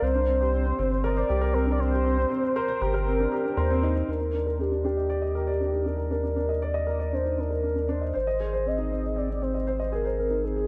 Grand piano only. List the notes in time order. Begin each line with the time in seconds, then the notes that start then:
0.02 C4
0.15 D4
0.28 C4
0.40 G4
0.53 C4
0.65 C4
0.79 C4
0.91 C5
1.04 A#4
1.17 C5
1.29 G4
1.41 A#4
1.53 C4
1.66 D4
1.79 C4
1.92 G4
2.04 C4
2.18 C4
2.30 C4
2.43 C5
2.56 A#4
2.68 C5
2.81 G4
2.94 A#4
3.07 C4
3.20 D4
3.32 G4
3.45 D4
3.57 A#4
3.71 C4
3.83 D#4
3.95 D#4
4.08 D4
4.21 D#4
4.34 D4
4.46 A#4
4.59 D4
4.71 D4
4.84 D4
4.97 D#5
5.10 D5
5.22 D#5
5.35 A#4
5.47 D5
5.60 D4
5.72 D#4
5.85 D4
5.97 A#4
6.10 D4
6.23 D4
6.36 D4
6.49 D#5
6.62 D5
6.74 D#5
6.87 A#4
6.99 D5
7.13 D4
7.25 D#4
7.38 D4
7.50 A#4
7.63 D4
7.75 D4
7.89 D4
8.01 D#5
8.14 C5
8.27 D#5
8.40 G#4
8.53 C5
8.66 C4
8.78 D#4
8.91 C4
9.04 G#4
9.16 C4
9.29 C4
9.42 C4
9.54 D#5
9.67 C5
9.80 D#5
9.92 G#4
10.05 C5
10.18 C4
10.30 D#4
10.43 C4
10.56 G#4